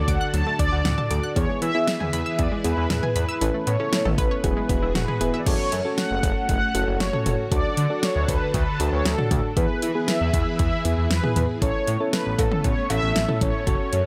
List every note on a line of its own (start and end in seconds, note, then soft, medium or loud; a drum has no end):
0.00 1.34 D3 medium
0.00 0.48 D4 medium
0.00 1.34 D4 medium
0.00 0.48 F#4 medium
0.00 1.32 F#4 medium
0.00 0.48 A4 medium
0.00 1.34 A4 medium
0.08 0.17 D2 medium
0.08 0.34 F#5 loud
0.08 0.18 D6 loud
0.08 kick medium
0.08 closed hi-hat medium
0.21 0.31 F#6 medium
0.34 0.43 D2 loud
0.34 0.44 F#3 medium
0.34 0.60 A5 loud
0.34 closed hi-hat medium
0.46 0.57 A3 medium
0.59 0.69 D2 medium
0.59 0.69 D4 medium
0.59 1.09 D5 loud
0.59 kick medium
0.59 closed hi-hat medium
0.72 0.82 D2 loud
0.72 0.82 F#4 medium
0.85 0.94 D2 loud
0.85 0.95 F#5 loud
0.85 snare loud
0.85 closed hi-hat medium
0.85 mid tom loud
0.98 1.08 A5 medium
0.98 mid tom medium
1.11 1.20 D2 loud
1.11 1.30 D4 medium
1.11 1.30 F#4 medium
1.11 1.30 A4 medium
1.11 1.37 D5 loud
1.11 1.21 D6 medium
1.11 closed hi-hat medium
1.23 1.33 F#6 loud
1.36 1.46 E2 loud
1.36 3.39 E3 medium
1.36 1.46 E3 medium
1.36 1.65 B3 medium
1.36 3.39 E4 medium
1.36 1.65 E4 medium
1.36 3.39 G#4 medium
1.36 1.65 G#4 medium
1.36 3.39 B4 medium
1.36 1.60 C#5 loud
1.36 kick loud
1.36 closed hi-hat medium
1.49 1.59 G#3 medium
1.62 1.71 E3 loud
1.62 1.72 B3 medium
1.62 2.12 E5 loud
1.62 closed hi-hat medium
1.75 2.43 B3 medium
1.75 1.85 E4 medium
1.75 2.43 E4 medium
1.75 2.43 G#4 medium
1.87 1.98 E5 medium
1.87 snare loud
1.87 closed hi-hat medium
2.00 2.10 E2 medium
2.00 2.10 G#5 medium
2.00 mid tom medium
2.13 2.23 E2 loud
2.13 2.40 E5 medium
2.13 2.23 B5 loud
2.13 closed hi-hat medium
2.26 2.36 E6 medium
2.39 2.48 E2 loud
2.39 2.49 E3 medium
2.39 2.50 D5 loud
2.39 kick loud
2.39 closed hi-hat medium
2.52 2.62 G#3 medium
2.64 2.74 E2 medium
2.64 2.74 B3 medium
2.64 3.23 B3 medium
2.64 3.23 E4 medium
2.64 3.23 G#4 medium
2.64 3.15 B4 loud
2.64 closed hi-hat medium
2.77 2.87 E2 medium
2.77 2.87 E4 medium
2.90 3.00 E2 loud
2.90 3.00 E5 loud
2.90 snare loud
2.90 closed hi-hat medium
2.90 mid tom loud
3.03 3.13 G#5 medium
3.03 mid tom medium
3.16 3.25 E2 loud
3.16 3.69 B4 loud
3.16 3.26 B5 medium
3.16 closed hi-hat medium
3.29 3.39 E6 loud
3.41 3.51 A1 loud
3.41 3.51 E3 medium
3.41 4.43 A3 medium
3.41 5.44 B3 medium
3.41 3.71 C#4 medium
3.41 4.43 C#4 medium
3.41 3.71 E4 medium
3.41 3.71 A4 medium
3.41 closed hi-hat medium
3.54 3.64 A3 medium
3.67 3.76 A2 loud
3.67 3.77 B3 medium
3.67 4.20 C#5 loud
3.67 closed hi-hat medium
3.80 3.90 C#4 medium
3.80 4.44 C#4 medium
3.80 4.43 E4 medium
3.80 4.44 A4 medium
3.93 4.03 E4 medium
3.93 snare loud
3.93 closed hi-hat medium
4.05 4.15 A1 loud
4.05 4.15 A4 medium
4.05 mid tom medium
4.18 4.28 A1 loud
4.18 4.28 B4 loud
4.18 4.91 B4 medium
4.18 kick medium
4.18 closed hi-hat medium
4.31 4.41 C#5 medium
4.44 4.53 E1 loud
4.44 5.45 E3 medium
4.44 4.54 F#3 medium
4.44 5.05 B3 medium
4.44 5.05 E4 medium
4.44 5.45 F#4 medium
4.44 5.05 G#4 medium
4.44 5.45 G#4 medium
4.44 kick medium
4.44 closed hi-hat medium
4.57 4.67 G#3 medium
4.69 4.79 E1 medium
4.69 4.80 B3 medium
4.69 kick medium
4.69 closed hi-hat medium
4.82 4.92 E1 loud
4.82 4.92 E4 medium
4.95 5.05 E1 loud
4.95 5.05 F#4 loud
4.95 5.41 B4 loud
4.95 snare loud
4.95 closed hi-hat medium
4.95 mid tom loud
5.08 5.18 G#4 medium
5.08 mid tom medium
5.21 5.30 E1 loud
5.21 5.40 B3 medium
5.21 5.40 E4 medium
5.21 5.40 G#4 loud
5.21 5.31 B4 medium
5.21 closed hi-hat medium
5.34 5.44 E5 loud
5.40 5.47 D5 medium
5.46 5.56 F#1 loud
5.46 7.50 A3 medium
5.46 5.76 C#4 medium
5.46 7.50 C#4 medium
5.46 5.76 F#4 medium
5.46 9.53 F#4 medium
5.46 5.76 A4 medium
5.46 5.99 C#5 loud
5.46 kick loud
5.46 closed hi-hat medium
5.46 crash loud
5.72 5.82 F#2 loud
5.72 closed hi-hat medium
5.85 6.53 C#4 medium
5.85 6.53 F#4 medium
5.85 6.53 A4 medium
5.98 6.48 F#5 loud
5.98 snare loud
5.98 closed hi-hat medium
6.11 6.20 F#1 loud
6.23 6.33 F#1 loud
6.23 kick medium
6.23 closed hi-hat medium
6.49 6.58 F#1 loud
6.49 6.97 F#5 loud
6.49 kick medium
6.49 closed hi-hat medium
6.75 6.84 F#1 loud
6.75 7.04 C#4 medium
6.75 7.04 F#4 medium
6.75 7.04 A4 medium
6.75 closed hi-hat medium
6.88 6.97 F#1 loud
7.00 7.10 F#1 loud
7.00 7.36 C#5 loud
7.00 snare loud
7.00 closed hi-hat medium
7.13 7.23 C#4 medium
7.13 7.23 F#4 medium
7.13 7.23 A4 medium
7.13 mid tom medium
7.26 7.35 F#1 loud
7.26 7.45 C#4 medium
7.26 7.45 F#4 medium
7.26 7.45 A4 medium
7.26 closed hi-hat medium
7.26 mid tom medium
7.52 7.61 D2 loud
7.52 9.55 D3 medium
7.52 7.81 D4 medium
7.52 9.55 D4 medium
7.52 7.81 F#4 medium
7.52 7.81 A4 medium
7.52 9.55 A4 medium
7.52 8.04 D5 loud
7.52 kick loud
7.52 closed hi-hat medium
7.77 7.87 D3 loud
7.77 closed hi-hat medium
7.90 8.58 D4 medium
7.90 8.58 F#4 medium
7.90 8.58 A4 medium
8.03 8.29 C#5 loud
8.03 snare loud
8.03 closed hi-hat medium
8.16 8.25 D2 loud
8.28 8.38 D2 medium
8.28 8.53 B4 medium
8.28 kick medium
8.28 closed hi-hat medium
8.54 8.64 D2 loud
8.54 8.94 B4 loud
8.54 kick medium
8.54 closed hi-hat medium
8.80 8.89 D2 medium
8.80 9.09 D4 medium
8.80 9.09 F#4 medium
8.80 9.09 A4 medium
8.80 closed hi-hat medium
8.93 9.02 D2 loud
8.93 9.06 C#5 medium
9.05 9.15 D2 loud
9.05 9.53 A4 loud
9.05 snare loud
9.05 closed hi-hat medium
9.18 9.28 D4 medium
9.18 9.28 F#4 medium
9.18 9.28 A4 medium
9.18 mid tom medium
9.31 9.40 D2 loud
9.31 9.51 D4 medium
9.31 9.51 F#4 medium
9.31 9.51 A4 medium
9.31 kick medium
9.31 closed hi-hat medium
9.31 mid tom medium
9.57 9.66 E2 loud
9.57 11.60 E3 medium
9.57 9.86 B3 medium
9.57 11.60 E4 medium
9.57 9.86 E4 medium
9.57 11.60 G#4 medium
9.57 9.86 G#4 medium
9.57 11.60 B4 medium
9.57 10.10 B4 loud
9.57 kick loud
9.57 closed hi-hat medium
9.82 9.92 E3 loud
9.82 closed hi-hat medium
9.95 10.63 B3 medium
9.95 10.63 E4 medium
9.95 10.63 G#4 medium
10.08 10.58 E5 loud
10.08 snare loud
10.08 closed hi-hat medium
10.21 10.30 E2 medium
10.33 10.43 E2 loud
10.33 kick medium
10.33 closed hi-hat medium
10.59 10.69 E2 loud
10.59 11.12 E5 loud
10.59 kick medium
10.59 closed hi-hat medium
10.85 10.94 E2 medium
10.85 11.14 B3 medium
10.85 11.14 E4 medium
10.85 11.14 G#4 medium
10.85 closed hi-hat medium
10.98 11.07 E2 medium
11.11 11.20 E2 medium
11.11 11.46 B4 loud
11.11 snare loud
11.11 closed hi-hat medium
11.23 11.33 B3 medium
11.23 11.33 E4 medium
11.23 11.33 G#4 medium
11.23 mid tom loud
11.36 11.46 E2 loud
11.36 11.56 B3 medium
11.36 11.56 E4 medium
11.36 11.56 G#4 medium
11.36 closed hi-hat medium
11.36 mid tom medium
11.62 11.71 A1 loud
11.62 14.06 A3 medium
11.62 13.65 B3 medium
11.62 11.91 C#4 medium
11.62 14.06 C#4 medium
11.62 11.91 E4 medium
11.62 11.91 A4 medium
11.62 12.10 C#5 loud
11.62 kick loud
11.62 closed hi-hat medium
11.87 11.97 A2 loud
11.87 closed hi-hat medium
12.00 12.69 C#4 medium
12.00 12.69 E4 medium
12.00 12.69 A4 medium
12.13 12.40 B4 loud
12.13 snare loud
12.13 closed hi-hat medium
12.26 12.35 A1 loud
12.39 12.48 A1 loud
12.39 12.65 A4 medium
12.39 kick medium
12.39 closed hi-hat medium
12.39 cowbell medium
12.52 mid tom loud
12.64 12.74 A1 loud
12.64 12.91 C#5 loud
12.64 kick medium
12.64 closed hi-hat medium
12.90 12.99 A1 loud
12.90 13.19 C#4 medium
12.90 13.19 E4 medium
12.90 13.19 A4 medium
12.90 13.38 E5 loud
12.90 closed hi-hat medium
12.90 cowbell medium
13.03 13.12 A1 loud
13.16 13.25 A1 loud
13.16 snare loud
13.16 closed hi-hat medium
13.29 13.38 C#4 medium
13.29 13.38 E4 medium
13.29 13.38 A4 medium
13.29 mid tom medium
13.41 13.51 A1 loud
13.41 13.61 C#4 medium
13.41 13.61 E4 medium
13.41 13.61 A4 medium
13.41 14.06 C#5 loud
13.41 kick medium
13.41 closed hi-hat medium
13.41 mid tom medium
13.67 13.76 F#1 loud
13.67 13.96 C#4 medium
13.67 14.06 F#4 medium
13.67 13.96 F#4 medium
13.67 13.96 A4 medium
13.67 kick loud
13.67 closed hi-hat medium
13.93 14.02 F#2 loud
13.93 closed hi-hat medium